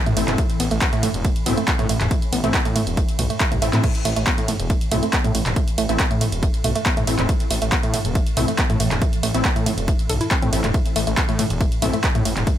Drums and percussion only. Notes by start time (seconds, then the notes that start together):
0.06 closed hi-hat, mid tom
0.17 open hi-hat, ride
0.28 clap, closed hi-hat, mid tom
0.38 kick, closed hi-hat, ride
0.50 closed hi-hat
0.60 open hi-hat, ride
0.71 closed hi-hat
0.81 kick, clap, closed hi-hat, ride
0.93 closed hi-hat
1.03 mid tom, open hi-hat, ride
1.14 closed hi-hat
1.25 kick, closed hi-hat, ride
1.36 closed hi-hat
1.46 mid tom, open hi-hat, ride
1.57 closed hi-hat
1.68 kick, clap, closed hi-hat, ride
1.79 closed hi-hat, mid tom
1.89 open hi-hat, ride
2.01 clap, closed hi-hat, mid tom
2.11 kick, closed hi-hat, ride
2.22 closed hi-hat
2.33 open hi-hat, ride
2.44 closed hi-hat, mid tom
2.54 kick, clap, closed hi-hat, ride
2.65 closed hi-hat
2.76 mid tom, open hi-hat, ride
2.87 closed hi-hat
2.97 kick, closed hi-hat, ride
3.08 closed hi-hat
3.19 mid tom, open hi-hat, ride
3.30 closed hi-hat
3.40 kick, clap, closed hi-hat, ride
3.52 closed hi-hat, mid tom
3.62 open hi-hat, ride
3.73 clap, closed hi-hat, mid tom
3.84 kick, closed hi-hat, crash, ride
3.95 closed hi-hat
4.05 open hi-hat, ride
4.16 closed hi-hat
4.27 kick, clap, closed hi-hat, ride
4.38 closed hi-hat
4.48 mid tom, open hi-hat, ride
4.60 closed hi-hat
4.70 kick, closed hi-hat, ride
4.81 closed hi-hat
4.92 mid tom, open hi-hat, ride
5.03 closed hi-hat
5.13 kick, clap, closed hi-hat, ride
5.24 closed hi-hat, mid tom
5.35 open hi-hat, ride
5.46 clap, closed hi-hat, mid tom
5.56 kick, closed hi-hat, ride
5.68 closed hi-hat
5.78 open hi-hat, ride
5.89 closed hi-hat
6.00 kick, clap, closed hi-hat, ride
6.11 closed hi-hat
6.21 mid tom, open hi-hat, ride
6.32 closed hi-hat
6.43 kick, closed hi-hat, ride
6.54 closed hi-hat
6.64 mid tom, open hi-hat, ride
6.75 closed hi-hat
6.86 kick, clap, closed hi-hat, ride
6.97 closed hi-hat, mid tom
7.07 open hi-hat, ride
7.19 clap, closed hi-hat, mid tom
7.29 kick, closed hi-hat, ride
7.40 closed hi-hat
7.51 open hi-hat, ride
7.62 closed hi-hat
7.72 kick, clap, closed hi-hat, ride
7.83 closed hi-hat
7.94 mid tom, open hi-hat, ride
8.05 closed hi-hat
8.15 kick, closed hi-hat, ride
8.26 closed hi-hat
8.37 mid tom, open hi-hat, ride
8.48 closed hi-hat
8.58 kick, clap, closed hi-hat, ride
8.70 closed hi-hat, mid tom
8.80 open hi-hat, ride
8.91 clap, closed hi-hat, mid tom
9.02 kick, closed hi-hat, ride
9.13 closed hi-hat
9.23 open hi-hat, ride
9.34 closed hi-hat
9.45 kick, clap, closed hi-hat, ride
9.56 closed hi-hat
9.66 mid tom, open hi-hat, ride
9.78 closed hi-hat
9.88 kick, closed hi-hat, ride
9.99 closed hi-hat
10.10 mid tom, open hi-hat, ride
10.21 closed hi-hat
10.31 kick, clap, closed hi-hat, ride
10.42 closed hi-hat, mid tom
10.53 open hi-hat, ride
10.64 clap, closed hi-hat, mid tom
10.74 kick, closed hi-hat, ride
10.86 closed hi-hat
10.96 open hi-hat, ride
11.07 closed hi-hat
11.17 kick, clap, closed hi-hat, ride
11.29 closed hi-hat
11.39 mid tom, open hi-hat, ride
11.50 closed hi-hat
11.61 kick, closed hi-hat, ride
11.72 closed hi-hat
11.82 mid tom, open hi-hat, ride
11.93 closed hi-hat
12.04 kick, clap, closed hi-hat, ride
12.15 closed hi-hat, mid tom
12.25 open hi-hat, ride
12.37 clap, closed hi-hat, mid tom
12.47 kick, closed hi-hat, ride